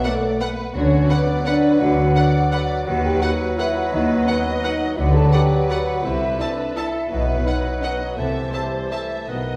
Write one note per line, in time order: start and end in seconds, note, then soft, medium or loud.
0.00 0.48 F#3 medium
0.00 0.45 B4 soft
0.00 0.12 B4 soft
0.00 0.45 F#5 soft
0.00 0.12 F#5 soft
0.04 0.41 A3 medium
0.04 0.40 A4 medium
0.04 0.41 D5 soft
0.04 0.12 F#5 soft
0.40 0.75 B3 medium
0.40 0.74 B4 medium
0.40 0.49 B4 soft
0.40 0.74 B4 medium
0.40 0.48 F#5 soft
0.40 0.49 F#5 soft
0.74 1.03 D2 medium
0.74 1.04 D3 medium
0.74 2.83 F#3 medium
0.74 1.10 C#4 medium
0.74 1.09 F#4 soft
0.74 2.83 B4 medium
0.74 1.09 C#5 medium
0.74 2.83 F#5 medium
1.09 1.47 B3 medium
1.09 1.18 B4 soft
1.09 1.47 B4 medium
1.09 1.46 D5 medium
1.09 1.17 F#5 soft
1.09 1.18 F#5 soft
1.46 1.81 D4 medium
1.46 2.16 B4 medium
1.46 1.54 B4 soft
1.46 1.80 D5 medium
1.46 1.54 F#5 soft
1.80 2.10 D2 medium
1.80 2.10 D3 medium
1.80 2.70 F#4 medium
1.80 2.62 F#5 medium
2.16 2.24 B4 soft
2.16 2.52 D5 medium
2.16 2.24 F#5 soft
2.52 2.60 B4 soft
2.52 2.86 D5 medium
2.52 2.60 F#5 soft
2.86 3.16 D#2 medium
2.86 3.16 D#3 medium
2.86 4.94 F#3 medium
2.86 3.03 F#4 medium
2.86 4.94 B4 medium
2.86 3.58 B4 medium
2.86 3.03 F#5 medium
2.86 4.94 F#5 medium
3.04 3.22 G4 medium
3.04 3.22 G5 medium
3.22 3.59 F#4 medium
3.22 3.30 B4 medium
3.22 3.58 F#5 medium
3.22 3.30 F#5 soft
3.58 3.92 E4 medium
3.58 3.66 B4 soft
3.58 4.26 B4 medium
3.58 3.92 E5 medium
3.58 3.66 F#5 soft
3.58 3.67 F#5 soft
3.92 4.22 D#2 medium
3.92 4.21 D#3 medium
3.92 4.28 D#4 medium
3.92 4.28 D#5 medium
4.26 4.63 B3 medium
4.26 4.35 B4 soft
4.26 4.63 B4 medium
4.26 4.98 D#5 medium
4.26 4.35 F#5 soft
4.26 4.36 F#5 soft
4.63 4.97 D#4 medium
4.63 4.72 B4 soft
4.63 4.98 D#5 medium
4.63 4.72 F#5 soft
4.97 5.27 D2 medium
4.97 5.27 D3 medium
4.97 6.05 F#3 medium
4.97 5.14 F#4 medium
4.97 6.73 B4 medium
4.97 6.06 B4 soft
4.97 6.02 D5 soft
4.97 5.15 F#5 medium
5.15 5.33 A4 medium
5.15 5.33 A5 medium
5.32 5.69 G4 medium
5.32 5.41 B4 soft
5.32 5.41 D5 soft
5.32 5.41 F#5 soft
5.32 5.70 G5 medium
5.69 6.04 F#4 medium
5.69 5.78 B4 soft
5.69 5.78 D5 soft
5.69 5.78 F#5 soft
5.69 6.04 F#5 medium
6.03 6.34 C2 medium
6.03 6.34 C3 medium
6.03 6.85 A3 soft
6.03 6.39 E4 medium
6.03 6.85 C5 soft
6.03 6.40 E5 medium
6.03 6.84 E5 soft
6.39 6.77 D4 medium
6.39 6.77 D5 medium
6.39 6.48 E5 soft
6.39 6.48 A5 soft
6.76 7.10 E4 medium
6.76 7.11 A4 soft
6.76 6.85 E5 soft
6.76 7.12 E5 medium
6.76 6.85 A5 soft
7.10 7.41 B1 medium
7.10 7.40 B2 medium
7.10 8.20 F#3 soft
7.10 7.28 D#4 medium
7.10 7.82 B4 medium
7.10 8.20 B4 soft
7.10 7.29 D#5 medium
7.10 8.21 F#5 soft
7.28 7.46 E4 medium
7.28 7.47 E5 soft
7.46 7.83 D#4 medium
7.46 7.55 B4 soft
7.46 7.83 D#5 medium
7.46 7.55 F#5 soft
7.83 8.18 B3 medium
7.83 7.91 B4 soft
7.83 8.18 B4 soft
7.83 8.18 D#5 soft
7.83 7.91 F#5 soft
8.17 8.47 C2 soft
8.17 8.48 C3 soft
8.17 9.28 E3 soft
8.17 8.53 A3 medium
8.17 8.54 A4 soft
8.17 9.28 C5 soft
8.17 8.52 E5 soft
8.17 9.28 A5 soft
8.53 8.91 G3 soft
8.53 8.92 G4 soft
8.53 8.91 C5 soft
8.53 8.61 E5 soft
8.53 8.62 A5 soft
8.91 9.28 A3 soft
8.91 9.29 A4 soft
8.91 9.28 E5 soft
8.91 8.99 E5 soft
8.91 9.00 A5 soft
9.28 9.56 B1 soft
9.28 9.56 B2 soft
9.28 9.56 D#3 soft
9.28 9.56 B3 soft
9.28 9.56 B4 soft
9.28 9.56 D#5 soft
9.28 9.56 F#5 soft